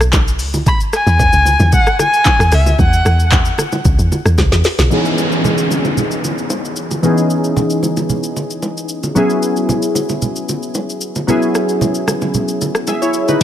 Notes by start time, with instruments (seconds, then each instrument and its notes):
Already playing: log drum bass B1
0.01 cross-stick, shaker
0.13 kick, clap, high bongo, shaker
0.28 shaker
0.39 log drum bass C#2, open hi-hat, shaker
0.54 low bongo, shaker
0.66 erhu B5, kick, low conga, shaker
0.80 shaker
0.93 erhu G#5, cross-stick, shaker
1.07 log drum bass E2, shaker
1.19 kick, high bongo, low conga, shaker
1.33 log drum bass C#2, shaker
1.46 low bongo, shaker
1.60 log drum bass E2, high bongo, low bongo, shaker
1.72 erhu F#5, kick, low conga, shaker
1.87 cross-stick, shaker
1.99 erhu G#5, cross-stick, low bongo, shaker
2.14 shaker
2.25 kick, clap, high bongo, shaker
2.39 log drum bass E2, cross-stick, shaker
2.52 log drum bass C#2, erhu E5, cross-stick, open hi-hat, shaker
2.66 low bongo, shaker
2.78 log drum bass E2, erhu F#5, kick, low conga, shaker
2.93 shaker
3.05 log drum bass E2, cross-stick, shaker
3.20 shaker
3.32 kick, clap, high bongo, low conga, shaker
3.45 shaker
3.58 cross-stick, low bongo, shaker
3.72 high bongo, low bongo, shaker
3.85 log drum bass C#2, kick, low conga, shaker
3.99 log drum bass E2, shaker
4.12 low bongo, shaker
4.25 log drum bass E2, cross-stick, shaker
4.38 log drum bass C#2, kick, snare, high bongo, shaker
4.52 log drum bass E2, snare, shaker
4.64 snare, open hi-hat, shaker
4.79 log drum bass B1, snare, low bongo, shaker
4.90 synth keys E3 B3 C#4 D#4 G#4, downlifter, low conga, shaker
5.05 shaker
5.18 shaker
5.32 shaker
5.44 high bongo, low conga, shaker
5.58 shaker
5.70 high bongo, low bongo, shaker
5.85 high bongo, low bongo, shaker
5.97 low conga, shaker
6.11 shaker
6.24 low bongo, shaker
6.38 shaker
6.50 high bongo, shaker
6.65 shaker
6.76 shaker
6.91 low bongo, shaker
7.03 synth keys E3 B3 C#4 D#4 G#4, low conga, shaker
7.18 shaker
7.30 shaker
7.44 shaker
7.57 high bongo, low conga, shaker
7.70 shaker
7.83 high bongo, low bongo, shaker
7.97 high bongo, low bongo, shaker
8.09 low conga, shaker
8.23 shaker
8.37 low bongo, shaker
8.50 shaker
8.62 high bongo, shaker
8.77 shaker
8.89 shaker
9.03 low bongo, shaker
9.15 synth keys F#3 B3 C#4 E4 G#4, low conga, shaker
9.30 shaker
9.43 shaker
9.56 shaker
9.69 high bongo, low conga, shaker
9.82 shaker
9.95 high bongo, low bongo, shaker
10.09 high bongo, low bongo, shaker
10.22 low conga, shaker
10.36 shaker
10.49 low bongo, shaker
10.63 shaker
10.74 high bongo, shaker
10.90 shaker
11.01 shaker
11.16 low bongo, shaker
11.27 synth keys F#3 B3 C#4 E4 G#4, low conga, shaker
11.42 shaker
11.55 cross-stick, shaker
11.69 shaker
11.81 high bongo, low conga, shaker
11.95 shaker
12.08 cross-stick, high bongo, low bongo, shaker
12.21 high bongo, low bongo, shaker
12.34 low conga, shaker
12.48 shaker
12.61 low bongo, shaker
12.75 cross-stick, shaker
12.87 synth keys G#4 E5, high bongo, shaker
13.02 synth keys E4 C#5, shaker
13.14 shaker
13.28 synth keys D#4 B4, low bongo, shaker